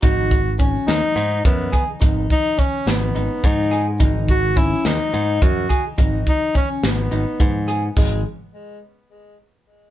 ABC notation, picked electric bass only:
X:1
M:7/8
L:1/16
Q:1/4=106
K:G#m
V:1 name="Picked electric bass" clef=bass
G,,,6 D,, z G,,2 F,,2 z2 | G,,,2 z4 G,,,2 G,,, z G,,4 | G,,,6 D,, z G,,2 F,,2 z2 | G,,,2 z4 G,,,2 G,,, z G,,4 |
G,,,2 z12 |]